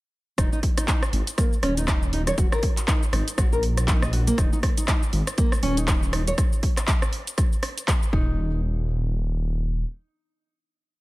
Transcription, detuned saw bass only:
0.38 0.47 D#1 loud
1.13 1.22 G#1 medium
1.63 2.32 D#1 medium
2.38 2.47 D#1 loud
3.13 3.22 G#1 medium
3.38 4.32 A#1 medium
4.38 4.47 D#1 loud
5.13 5.22 G#1 medium
5.63 6.32 D#1 medium
8.13 9.84 D#1 loud

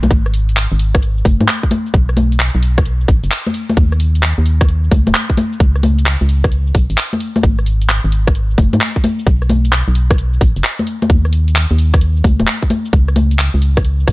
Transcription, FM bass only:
0.03 0.09 B1 loud
0.11 0.67 G#1 loud
0.72 1.23 G#1 loud
1.25 1.37 F#1 loud
1.40 1.47 G#2 medium
1.94 2.50 B1 loud
2.55 3.06 B1 loud
3.08 3.21 A1 loud
3.24 3.30 F#1 medium
3.77 4.33 D#2 loud
4.38 4.89 D#2 loud
4.92 5.04 C#2 loud
5.07 5.13 D#1 medium
5.60 6.17 C#2 loud
6.21 6.72 C#2 loud
6.75 6.87 B1 loud
6.90 6.96 G#1 medium
7.43 8.00 G#1 loud
8.04 8.56 G#1 loud
8.58 8.70 F#1 loud
8.73 8.79 G#2 medium
9.27 9.83 B1 loud
9.88 10.39 B1 loud
10.41 10.53 A1 loud
10.57 10.63 F#1 medium
11.10 11.66 D#2 loud
11.71 12.22 D#2 loud
12.24 12.37 C#2 loud
12.40 12.46 D#1 medium
12.93 13.49 C#2 loud
13.54 14.05 C#2 loud
14.08 14.12 B1 loud

